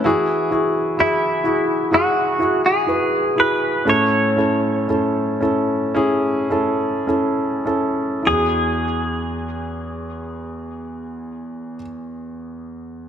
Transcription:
<<
  \new Staff \with { instrumentName = "Clean electric guitar" } { \time 4/4 \key e \major \tempo 4 = 55 r4 e'4 fis'8. gis'8. b'8 | cis''2.~ cis''8 r8 | gis'1 | }
  \new Staff \with { instrumentName = "Grand piano" } { \time 4/4 \key e \major <e' fis' gis'>8 <e' fis' gis'>8 <e' fis' gis'>8 <e' fis' gis'>8 <e' fis' gis'>8 <e' fis' gis'>8 <e' fis' b'>8 <e' fis' gis'>8 | <cis' e' a'>8 <cis' e' a'>8 <cis' e' a'>8 <cis' e' a'>8 <cis' e' gis'>8 <cis' e' a'>8 <cis' e' a'>8 <cis' e' a'>8 | <e' fis' gis'>1 | }
  \new Staff \with { instrumentName = "Grand piano" } { \clef bass \time 4/4 \key e \major e4. r2 r8 | a,4. r2 r8 | e,1 | }
>>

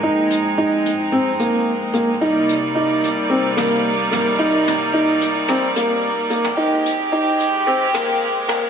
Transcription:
<<
  \new Staff \with { instrumentName = "Felt piano" } { \time 4/4 \key c \minor \tempo 4 = 110 ees'4 ees'4 c'8 bes4 bes8 | ees'4 ees'4 c'8 bes4 bes8 | ees'4 ees'4 c'8 bes4 bes8 | ees'4 ees'4 c'8 bes4 bes8 | }
  \new Staff \with { instrumentName = "String section" } { \time 4/4 \key c \minor <aes c' ees'>1 | <c g bes ees' d''>1~ | <c g bes ees' d''>1 | <aes c' g'>1 | }
  \new Staff \with { instrumentName = "Sub bass" } { \clef bass \time 4/4 \key c \minor bes,,1 | c,1~ | c,1 | aes,,1 | }
  \new DrumStaff \with { instrumentName = "Drums" } \drummode { \time 4/4 r8 hh8 r8 hh8 r8 hh8 r8 hh8 | r8 hh8 r8 hh8 r8 <hh toml>8 r8 <hh toml>8 | r8 <hh toml>8 r8 hh8 toml8 hh8 r8 hh16 toml16 | r8 hh8 r8 hh8 r8 <hh toml>8 r8 <hh toml>8 | }
>>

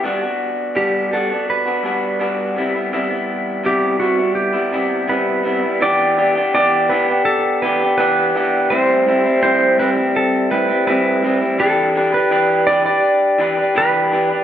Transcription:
<<
  \new Staff \with { instrumentName = "Electric slide guitar" } { \time 4/4 \key e \minor \tempo 4 = 83 r4 g'8 a'8 b'4. r8 | r4 g'8 fis'8 g'4 b'4 | d''4 d''8 b'8 a'8 b'8 b'4 | c''4 c''8 b'8 a'8 b'8 b'8. r16 |
a'8. b'8. d''16 d''4~ d''16 b'4 | }
  \new Staff \with { instrumentName = "Clean electric guitar" } { \time 4/4 \key e \minor <g b d' fis'>16 <b d' fis'>8. <g b d'>8 <g b d' fis'>16 <b d' fis'>8 <b d' fis'>16 <g b d' fis'>8 <g b d' fis'>8 <c g b e'>16 <g b e'>16 | <c g b e'>16 <g b e'>8. <c g b e'>8 <c g b e'>16 <g b e'>8 <g b e'>16 <c g b e'>8 <c g b e'>8 <c g b e'>16 <g b e'>16 | <e b d' g'>8 <e b d' g'>16 <b d' g'>16 <e b d' g'>8 <e b d' g'>16 <b d' g'>8. <e b d' g'>16 <b d' g'>16 <e b d' g'>8 <e b d' g'>8 | <a, g c' e'>8 <a, g c' e'>16 <g c' e'>16 <a, g c' e'>8 <a, g c' e'>16 <g c' e'>8. <a, g c' e'>16 <g c' e'>16 <a, g c' e'>8 <a, g c' e'>16 <g c' e'>16 |
<e d' g' b'>8 <e d' g' b'>16 <d' g' b'>16 <e d' g' b'>8 <e d' g' b'>16 <d' g' b'>8. <e d' g' b'>16 <d' g' b'>16 <e d' g' b'>8 <e d' g' b'>16 <d' g' b'>16 | }
>>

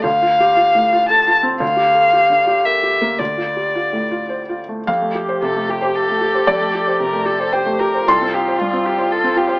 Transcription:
<<
  \new Staff \with { instrumentName = "Violin" } { \time 3/4 \key f \major \tempo 4 = 114 f''2 a''8 r8 | f''2 e''4 | d''2~ d''8 r8 | r4 a'8 g'8 a'4~ |
a'4 bes'8 a'8 c''8 bes'8 | a'8 g'8 f'8 g'8 a'8 g'8 | }
  \new Staff \with { instrumentName = "Viola" } { \time 3/4 \key f \major r2. | r2. | r2. | g'2.~ |
g'2. | f'2. | }
  \new Staff \with { instrumentName = "Felt piano" } { \time 3/4 \key f \major << { r2. | r2. | r2. | f''2. |
d''2 g''4 | c'''2. | } \\ { \tuplet 3/2 { d,8 f'8 g'8 f'8 a,8 f'8 a'8 f'8 c'8 } | \tuplet 3/2 { d,8 g'8 a'8 g'8 d8 g'8 bes'8 g'8 bes8 } | \tuplet 3/2 { d,8 f'8 g'8 f'8 a,8 f'8 c''8 f'8 a8 } | f,16 a16 g'16 c''16 c16 a16 g'16 c''8 a16 g'16 c''16 |
f,16 a16 g'16 c''16 c16 a16 g'16 c''8 a16 g'16 c''16 | c,16 c'16 f'16 c''16 g,16 c'16 f'16 c''8 c'16 f'16 c''16 | } >> }
>>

